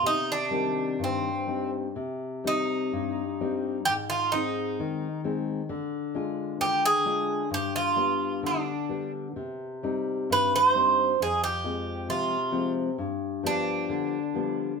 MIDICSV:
0, 0, Header, 1, 3, 480
1, 0, Start_track
1, 0, Key_signature, -3, "minor"
1, 0, Tempo, 958466
1, 21, Time_signature, 2, 2, 24, 8
1, 1941, Tempo, 910470
1, 4341, Tempo, 934579
1, 5301, Tempo, 904977
1, 7689, End_track
2, 0, Start_track
2, 0, Title_t, "Bouzouki"
2, 0, Program_c, 0, 25
2, 32, Note_on_c, 0, 63, 95
2, 149, Note_off_c, 0, 63, 0
2, 159, Note_on_c, 0, 62, 84
2, 518, Note_off_c, 0, 62, 0
2, 520, Note_on_c, 0, 60, 65
2, 854, Note_off_c, 0, 60, 0
2, 1239, Note_on_c, 0, 63, 73
2, 1930, Note_on_c, 0, 67, 101
2, 1964, Note_off_c, 0, 67, 0
2, 1967, Note_off_c, 0, 63, 0
2, 2057, Note_on_c, 0, 65, 88
2, 2174, Note_on_c, 0, 63, 85
2, 2186, Note_off_c, 0, 65, 0
2, 2639, Note_off_c, 0, 63, 0
2, 3382, Note_on_c, 0, 67, 99
2, 3505, Note_off_c, 0, 67, 0
2, 3511, Note_on_c, 0, 68, 104
2, 3843, Note_off_c, 0, 68, 0
2, 3873, Note_on_c, 0, 67, 93
2, 3985, Note_off_c, 0, 67, 0
2, 3987, Note_on_c, 0, 65, 88
2, 4324, Note_off_c, 0, 65, 0
2, 4360, Note_on_c, 0, 62, 69
2, 4689, Note_off_c, 0, 62, 0
2, 5316, Note_on_c, 0, 71, 97
2, 5433, Note_off_c, 0, 71, 0
2, 5438, Note_on_c, 0, 72, 94
2, 5790, Note_off_c, 0, 72, 0
2, 5792, Note_on_c, 0, 68, 85
2, 5903, Note_off_c, 0, 68, 0
2, 5905, Note_on_c, 0, 67, 87
2, 6254, Note_off_c, 0, 67, 0
2, 6257, Note_on_c, 0, 65, 75
2, 6587, Note_off_c, 0, 65, 0
2, 6981, Note_on_c, 0, 62, 89
2, 7684, Note_off_c, 0, 62, 0
2, 7689, End_track
3, 0, Start_track
3, 0, Title_t, "Nylon-string guitar"
3, 0, Program_c, 1, 24
3, 14, Note_on_c, 1, 48, 64
3, 254, Note_on_c, 1, 55, 49
3, 254, Note_on_c, 1, 60, 42
3, 257, Note_on_c, 1, 51, 52
3, 482, Note_off_c, 1, 48, 0
3, 495, Note_on_c, 1, 43, 60
3, 641, Note_off_c, 1, 60, 0
3, 642, Note_off_c, 1, 55, 0
3, 644, Note_off_c, 1, 51, 0
3, 735, Note_on_c, 1, 55, 43
3, 737, Note_on_c, 1, 60, 39
3, 741, Note_on_c, 1, 63, 46
3, 934, Note_off_c, 1, 55, 0
3, 936, Note_off_c, 1, 60, 0
3, 937, Note_off_c, 1, 63, 0
3, 970, Note_off_c, 1, 43, 0
3, 980, Note_on_c, 1, 48, 58
3, 1222, Note_on_c, 1, 55, 45
3, 1226, Note_on_c, 1, 60, 42
3, 1229, Note_on_c, 1, 63, 51
3, 1453, Note_off_c, 1, 48, 0
3, 1465, Note_on_c, 1, 43, 60
3, 1607, Note_off_c, 1, 55, 0
3, 1609, Note_off_c, 1, 60, 0
3, 1610, Note_off_c, 1, 63, 0
3, 1706, Note_on_c, 1, 55, 49
3, 1707, Note_on_c, 1, 60, 46
3, 1709, Note_on_c, 1, 63, 53
3, 1894, Note_off_c, 1, 55, 0
3, 1894, Note_off_c, 1, 60, 0
3, 1895, Note_off_c, 1, 63, 0
3, 1924, Note_off_c, 1, 43, 0
3, 1941, Note_on_c, 1, 44, 63
3, 2183, Note_on_c, 1, 56, 50
3, 2186, Note_on_c, 1, 60, 48
3, 2187, Note_on_c, 1, 63, 60
3, 2411, Note_off_c, 1, 44, 0
3, 2426, Note_on_c, 1, 51, 71
3, 2568, Note_off_c, 1, 56, 0
3, 2569, Note_off_c, 1, 63, 0
3, 2570, Note_off_c, 1, 60, 0
3, 2662, Note_on_c, 1, 56, 56
3, 2665, Note_on_c, 1, 60, 49
3, 2667, Note_on_c, 1, 63, 57
3, 2853, Note_off_c, 1, 56, 0
3, 2855, Note_off_c, 1, 60, 0
3, 2855, Note_off_c, 1, 63, 0
3, 2888, Note_off_c, 1, 51, 0
3, 2899, Note_on_c, 1, 50, 67
3, 3138, Note_on_c, 1, 56, 52
3, 3141, Note_on_c, 1, 62, 48
3, 3145, Note_on_c, 1, 65, 59
3, 3364, Note_off_c, 1, 50, 0
3, 3382, Note_on_c, 1, 50, 72
3, 3523, Note_off_c, 1, 56, 0
3, 3525, Note_off_c, 1, 62, 0
3, 3528, Note_off_c, 1, 65, 0
3, 3617, Note_on_c, 1, 56, 53
3, 3618, Note_on_c, 1, 62, 46
3, 3620, Note_on_c, 1, 65, 55
3, 3809, Note_off_c, 1, 56, 0
3, 3809, Note_off_c, 1, 62, 0
3, 3810, Note_off_c, 1, 65, 0
3, 3845, Note_off_c, 1, 50, 0
3, 3854, Note_on_c, 1, 43, 65
3, 4093, Note_on_c, 1, 55, 45
3, 4097, Note_on_c, 1, 59, 44
3, 4097, Note_on_c, 1, 62, 52
3, 4324, Note_off_c, 1, 43, 0
3, 4341, Note_on_c, 1, 50, 65
3, 4483, Note_off_c, 1, 55, 0
3, 4484, Note_off_c, 1, 59, 0
3, 4484, Note_off_c, 1, 62, 0
3, 4579, Note_on_c, 1, 55, 47
3, 4582, Note_on_c, 1, 59, 39
3, 4583, Note_on_c, 1, 62, 49
3, 4772, Note_off_c, 1, 55, 0
3, 4774, Note_off_c, 1, 59, 0
3, 4774, Note_off_c, 1, 62, 0
3, 4806, Note_off_c, 1, 50, 0
3, 4820, Note_on_c, 1, 48, 60
3, 5061, Note_on_c, 1, 55, 48
3, 5065, Note_on_c, 1, 60, 42
3, 5066, Note_on_c, 1, 63, 51
3, 5285, Note_off_c, 1, 48, 0
3, 5302, Note_on_c, 1, 43, 64
3, 5446, Note_off_c, 1, 55, 0
3, 5447, Note_off_c, 1, 60, 0
3, 5448, Note_off_c, 1, 63, 0
3, 5540, Note_on_c, 1, 55, 50
3, 5544, Note_on_c, 1, 60, 42
3, 5546, Note_on_c, 1, 63, 53
3, 5733, Note_off_c, 1, 55, 0
3, 5735, Note_off_c, 1, 60, 0
3, 5736, Note_off_c, 1, 63, 0
3, 5769, Note_off_c, 1, 43, 0
3, 5781, Note_on_c, 1, 41, 63
3, 6014, Note_on_c, 1, 53, 52
3, 6017, Note_on_c, 1, 56, 45
3, 6019, Note_on_c, 1, 60, 54
3, 6237, Note_off_c, 1, 41, 0
3, 6250, Note_on_c, 1, 48, 69
3, 6390, Note_off_c, 1, 53, 0
3, 6392, Note_off_c, 1, 56, 0
3, 6392, Note_off_c, 1, 60, 0
3, 6479, Note_on_c, 1, 53, 50
3, 6482, Note_on_c, 1, 60, 55
3, 6483, Note_on_c, 1, 56, 45
3, 6675, Note_off_c, 1, 53, 0
3, 6676, Note_off_c, 1, 56, 0
3, 6677, Note_off_c, 1, 60, 0
3, 6712, Note_off_c, 1, 48, 0
3, 6726, Note_on_c, 1, 43, 65
3, 6964, Note_on_c, 1, 53, 50
3, 6970, Note_on_c, 1, 55, 47
3, 6972, Note_on_c, 1, 59, 57
3, 7196, Note_off_c, 1, 43, 0
3, 7208, Note_on_c, 1, 50, 68
3, 7353, Note_off_c, 1, 53, 0
3, 7356, Note_off_c, 1, 59, 0
3, 7357, Note_off_c, 1, 55, 0
3, 7446, Note_on_c, 1, 53, 49
3, 7449, Note_on_c, 1, 55, 46
3, 7453, Note_on_c, 1, 59, 56
3, 7646, Note_off_c, 1, 53, 0
3, 7648, Note_off_c, 1, 55, 0
3, 7650, Note_off_c, 1, 59, 0
3, 7684, Note_off_c, 1, 50, 0
3, 7689, End_track
0, 0, End_of_file